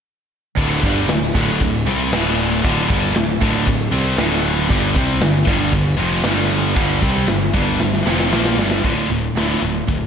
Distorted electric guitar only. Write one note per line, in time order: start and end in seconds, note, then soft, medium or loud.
0.58 0.82 D2 loud
0.58 0.83 A2 medium
0.58 0.83 D3 loud
0.84 1.09 G2 medium
0.84 1.09 D3 medium
0.84 1.09 G3 loud
1.10 1.30 D2 medium
1.10 1.30 A2 medium
1.36 1.60 D2 medium
1.36 1.60 A2 loud
1.36 1.61 D3 loud
1.61 1.81 D2 medium
1.61 1.82 A2 medium
1.87 2.12 C3 medium
1.87 2.12 G3 loud
1.87 2.13 C4 loud
2.12 2.63 D2 medium
2.12 2.63 A2 medium
2.12 2.63 D3 loud
2.65 2.89 D2 medium
2.65 2.90 A2 medium
2.65 2.90 D3 loud
2.92 3.16 G2 medium
2.92 3.16 D3 loud
2.92 3.16 G3 loud
3.17 3.37 D2 medium
3.17 3.37 A2 medium
3.42 3.66 D2 loud
3.42 3.66 A2 loud
3.42 3.67 D3 loud
3.67 3.88 D2 medium
3.67 3.88 A2 medium
3.92 4.17 C3 medium
3.92 4.17 G3 loud
3.92 4.18 C4 loud
4.17 4.68 D2 medium
4.17 4.69 A2 loud
4.17 4.68 D3 loud
4.69 4.95 G2 loud
4.69 4.95 D3 loud
4.69 4.94 G3 loud
4.95 5.21 C3 medium
4.95 5.21 G3 loud
4.95 5.21 C4 loud
5.21 5.42 G2 medium
5.21 5.43 D3 medium
5.47 5.72 G2 medium
5.47 5.72 D3 loud
5.47 5.73 G3 loud
5.73 5.94 G2 medium
5.73 5.94 D3 medium
5.97 6.23 F2 loud
5.97 6.23 C3 loud
5.97 6.24 F3 loud
6.23 6.74 G2 medium
6.23 6.75 D3 loud
6.23 6.75 G3 loud
6.75 7.01 G2 loud
6.75 7.01 D3 loud
6.75 7.01 G3 loud
7.02 7.27 C3 medium
7.02 7.27 G3 medium
7.02 7.27 C4 loud
7.28 7.49 G2 medium
7.28 7.49 D3 medium
7.53 7.79 G2 medium
7.53 7.79 D3 loud
7.53 7.79 G3 loud
7.80 8.01 G2 medium
7.80 8.01 D3 medium
8.05 8.30 F2 loud
8.05 8.31 C3 medium
8.05 8.30 F3 loud
8.31 8.56 A#2 medium
8.31 8.57 F3 medium
8.31 8.57 A#3 loud
8.57 8.82 G2 medium
8.57 8.83 D3 loud
8.57 8.83 G3 loud
8.84 9.08 D2 medium
8.84 9.08 A2 medium
8.84 9.09 D3 medium
9.11 9.33 D2 medium
9.11 9.33 A2 medium
9.37 9.60 D2 medium
9.37 9.61 A2 medium
9.37 9.61 D3 medium
9.63 9.85 D2 medium
9.63 9.85 A2 medium
9.88 10.07 D2 medium
9.88 10.07 A2 medium